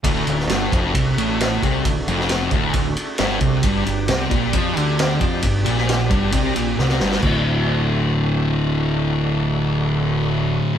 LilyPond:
<<
  \new Staff \with { instrumentName = "Tonewheel organ" } { \time 4/4 \key d \mixolydian \tempo 4 = 133 <a d' fis'>1~ | <a d' fis'>1 | <g d' g'>1~ | <g d' g'>1 |
<a d' fis'>1~ | <a d' fis'>1 | }
  \new Staff \with { instrumentName = "Distorted electric guitar" } { \clef bass \time 4/4 \key d \mixolydian d,8 d,8 g,8 f,8 c8 a,4 c8 | d,8 f,4 d,8 d,8 r8 g,8 c8 | g,8 g,8 c8 bes,8 f8 d4 f8 | g,8 bes,4 g,8 c8 bes,8 c8 g,8 |
<d, a, d>1~ | <d, a, d>1 | }
  \new Staff \with { instrumentName = "Fingered electric bass" } { \clef bass \time 4/4 \key d \mixolydian d,,8 d,,8 g,,8 f,,8 c,8 a,,4 c,8 | d,,8 f,,4 d,,8 d,,8 r8 g,,8 c,8 | g,,8 g,,8 c,8 bes,,8 f,8 d,4 f,8 | g,,8 bes,,4 g,,8 c,8 bes,,8 c,8 g,,8 |
d,,1~ | d,,1 | }
  \new DrumStaff \with { instrumentName = "Drums" } \drummode { \time 4/4 <bd cymr>8 cymr16 sn16 <cymr sn>8 <bd cymr>8 <bd cymr>8 cymr8 <cymr sn>8 <bd cymr>8 | <bd cymr>8 cymr16 sn16 <cymr sn>8 <bd cymr>8 <bd cymr>8 cymr8 <cymr sn>8 <bd cymr>8 | <bd cymr>8 cymr8 <cymr sn>8 <bd cymr>8 <bd cymr>8 cymr8 <cymr sn>8 <bd cymr>8 | <bd cymr>8 cymr16 sn16 <cymr sn>8 <bd cymr>8 <bd cymr>8 cymr8 sn16 sn16 sn16 sn16 |
<cymc bd>4 r4 r4 r4 | r4 r4 r4 r4 | }
>>